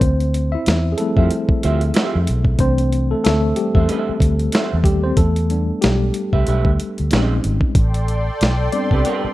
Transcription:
Already playing: C4 C5
0.01 D2, kick, closed hi-hat
0.20 closed hi-hat
0.34 closed hi-hat
0.52 E4 E5
0.66 E2, snare, closed hi-hat
0.92 G#4
0.98 F3 G3 A3 C4 E4 A4, closed hi-hat
1.17 F2 F4 G4 C5 E5, kick
1.31 closed hi-hat
1.49 muted fingered electric bass stroke, kick
1.63 D2 F4 G4 C5 E5, closed hi-hat
1.81 closed hi-hat
1.94 F4 G4 C5 E5, snare, closed hi-hat
2.15 F2
2.27 B1, closed hi-hat
2.45 kick
2.59 C2 E3 A3 C4 D4 C5, kick, closed hi-hat
2.78 closed hi-hat
2.92 closed hi-hat
3.11 A3 A4
3.24 D2 A3 A4, snare, closed hi-hat
3.56 G3 G4, closed hi-hat
3.75 E2 D4 A4 C5 E5, kick
3.89 D4 A4 C5 E5, closed hi-hat
4.09 muted fingered electric bass stroke
4.20 D2, kick, closed hi-hat
4.39 closed hi-hat
4.52 D4 A4 C5 E5, snare, closed hi-hat
4.73 E2
4.84 D#2 G3 G4, kick, closed hi-hat
5.04 C4 C5
5.17 E2 A3 A4, kick, closed hi-hat
5.36 closed hi-hat
5.50 G3 B3 D4, closed hi-hat
5.82 B1 G3 G4, snare, closed hi-hat
6.14 closed hi-hat
6.33 C2 D4 G4 B4 E5, kick
6.47 B1 D4 G4 B4 E5, closed hi-hat
6.65 D2, kick
6.80 closed hi-hat
6.98 D2, closed hi-hat
7.11 A#1 G#3 C4 C#4 D#4 G#4 C5 D#5, snare, closed hi-hat
7.44 G#1, closed hi-hat
7.61 kick
7.75 A1 A4 D5 G5 C6, kick, closed hi-hat
7.94 closed hi-hat
8.08 closed hi-hat
8.41 B1, snare, closed hi-hat
8.72 G3 B3 C4 D4 D5, closed hi-hat
8.91 C2 C4 G4 B4 D5, kick
9.05 C4 G4 B4 D5, closed hi-hat
9.24 muted fingered electric bass stroke

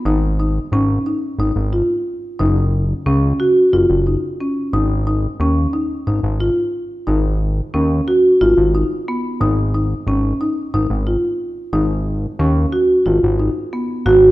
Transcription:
0.05 G#1 D#4
0.40 D#4
0.72 G#1 C#4
1.06 D#4
1.39 G#1 D#4
1.56 G#1
1.73 F4
2.39 F#1 D#4
3.06 C#2 C#4
3.40 F#4
3.73 F#1 F4
3.90 F#1
4.07 D#4
4.41 C#4
4.73 G#1 D#4
5.07 D#4
5.40 D#2 C#4
5.73 D#4
6.07 G#1 D#4
6.23 G#1
6.40 F4
7.07 G#1 D#4
7.74 D#2 C#4
8.08 F#4
8.41 G#1 F4
8.57 G#1
8.75 D#4
9.08 B3
9.41 G#1 D#4
9.75 D#4
10.07 G#1 C#4
10.41 D#4
10.74 G#1 D#4
10.90 G#1
11.07 F4
11.73 G#1 D#4
12.39 D#2 C#4
12.72 F#4
13.06 G#1 F4
13.23 G#1
13.39 D#4
13.73 B3
14.06 G#1 F#4

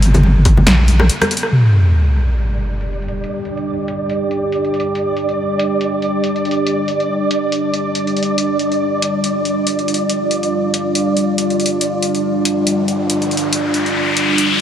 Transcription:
Already playing: G1
0.02 closed hi-hat
0.14 closed hi-hat, high bongo, low conga
0.23 high conga
0.45 kick, open hi-hat, high bongo
0.57 high conga, low conga
0.67 A#1, snare, closed hi-hat, high bongo
0.88 closed hi-hat, high conga
0.99 cross-stick, high bongo
1.10 closed hi-hat
1.21 cross-stick, closed hi-hat, high bongo, high conga
1.31 closed hi-hat
1.37 closed hi-hat
1.43 cross-stick
1.52 G3 D4 G4 D5, closed hi-hat, crash, sub drop
1.74 closed hi-hat
1.86 closed hi-hat
2.16 open hi-hat
2.38 closed hi-hat
2.59 closed hi-hat
2.81 closed hi-hat
2.93 closed hi-hat
3.02 closed hi-hat
3.08 closed hi-hat
3.24 closed hi-hat
3.45 closed hi-hat
3.57 closed hi-hat
3.88 open hi-hat
4.10 closed hi-hat
4.31 closed hi-hat
4.52 closed hi-hat
4.64 closed hi-hat
4.74 closed hi-hat
4.80 closed hi-hat
4.95 closed hi-hat
5.17 closed hi-hat
5.29 closed hi-hat
5.59 open hi-hat
5.81 closed hi-hat
6.02 closed hi-hat
6.24 closed hi-hat
6.36 closed hi-hat
6.45 closed hi-hat
6.51 closed hi-hat
6.67 closed hi-hat
6.88 closed hi-hat
7.00 closed hi-hat
7.31 open hi-hat
7.52 closed hi-hat
7.74 closed hi-hat
7.95 closed hi-hat
8.07 closed hi-hat
8.17 closed hi-hat
8.23 closed hi-hat
8.38 F4, closed hi-hat
8.59 closed hi-hat
8.72 closed hi-hat
9.02 open hi-hat
9.24 closed hi-hat
9.45 closed hi-hat
9.67 closed hi-hat
9.79 closed hi-hat
9.88 closed hi-hat
9.94 closed hi-hat
10.10 closed hi-hat
10.31 closed hi-hat
10.43 closed hi-hat
10.74 open hi-hat
10.95 closed hi-hat
11.17 closed hi-hat
11.38 closed hi-hat
11.50 closed hi-hat
11.60 closed hi-hat
11.66 closed hi-hat
11.81 closed hi-hat, riser
12.03 closed hi-hat
12.15 closed hi-hat
12.45 open hi-hat
12.67 closed hi-hat
12.88 closed hi-hat
13.10 closed hi-hat
13.22 closed hi-hat
13.31 closed hi-hat
13.37 closed hi-hat
13.53 closed hi-hat
13.74 closed hi-hat
13.86 closed hi-hat
14.17 open hi-hat
14.38 closed hi-hat

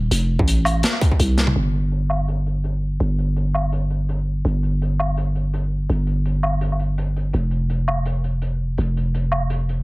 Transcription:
0.11 F1, closed hi-hat
0.39 A1, kick
0.48 closed hi-hat
0.65 closed hi-hat, low woodblock
0.83 snare, closed hi-hat
0.93 low woodblock
1.01 kick, closed hi-hat
1.12 kick
1.20 C2, closed hi-hat
1.38 snare, closed hi-hat
1.47 mid tom
1.56 G1, closed hi-hat
1.74 closed hi-hat
1.92 closed hi-hat
2.10 low woodblock
2.28 closed hi-hat
2.46 closed hi-hat
2.64 closed hi-hat
3.00 G1, closed hi-hat
3.19 closed hi-hat
3.36 closed hi-hat
3.54 low woodblock
3.72 closed hi-hat
3.90 closed hi-hat
4.09 closed hi-hat
4.45 G1, closed hi-hat
4.63 closed hi-hat
4.82 closed hi-hat
5.00 low woodblock
5.17 closed hi-hat
5.35 closed hi-hat
5.54 closed hi-hat
5.90 G1, closed hi-hat
6.07 closed hi-hat
6.25 closed hi-hat
6.43 low woodblock
6.61 closed hi-hat
6.72 low woodblock
6.79 closed hi-hat
6.98 closed hi-hat
7.16 closed hi-hat
7.33 F1, closed hi-hat
7.51 closed hi-hat
7.70 closed hi-hat
7.88 low woodblock
8.06 closed hi-hat
8.24 closed hi-hat
8.42 closed hi-hat
8.78 F1, closed hi-hat
8.97 closed hi-hat
9.14 closed hi-hat
9.32 low woodblock
9.50 closed hi-hat
9.69 closed hi-hat

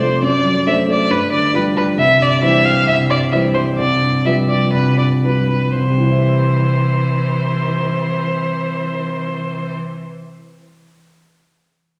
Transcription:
Already playing: F2 C3 A3 F4 C5
0.02 A3 C5
0.22 F#2 D5
0.45 F#3
0.67 F#3 A3 D4 C5 E5
0.88 A3 D5
1.10 G2 B4
1.31 D3 D5
1.54 F3 G3 F4 B4 D5
1.75 G3 B4
1.97 C2 E5
2.19 G2 D5
2.41 E3 G3 E4 C5 E5
2.64 G3 F5
2.86 C2 E5
3.09 G2 D5
3.32 E3 G3 E4 C5 E5
3.54 G3 C5
3.77 C2 D5
4.02 G2
4.25 F3 G3 F4 B4 E5
4.48 G3 D5
4.73 C2 B4
4.98 G2 D5
5.24 F3 G3 F4 B4
5.49 G3 B4
5.75 C2 E3 C5
5.83 C3
5.90 G3
5.97 E4
6.04 C5
6.12 E5

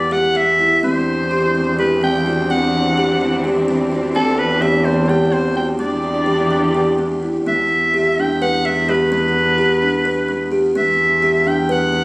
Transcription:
Already playing: E2 D5
0.11 G4 F#5
0.35 B3 E5
0.59 E4
0.83 E2 E3 C4 D4 C5
1.31 G4
1.55 C4
1.79 G4 B4
2.03 C4 G5
2.26 F#4
2.50 C4 F#5
2.97 G4
3.21 C4
3.44 G4
3.68 C4
3.92 F#4
4.14 E2 C4 A4
4.38 B4
4.62 G4 E5
4.85 C4 C5
5.09 G4 G5
5.33 C4 C5
5.56 F#4 G5
5.79 E2 E3 B3 D4 G4 D5
6.26 G4
6.50 B3
6.75 G4
6.99 B3
7.23 E4
7.46 E2 B3 E5
7.94 G4
8.18 D4 G5
8.42 B4 F#5
8.65 B3 E5
8.89 G4 B4
9.12 B3 B4
9.58 G4
9.82 D4
10.05 B4
10.28 B3
10.52 G4
10.75 E2 B3 E5
11.22 G4
11.46 D4 G5
11.69 B4 F#5
11.92 B3

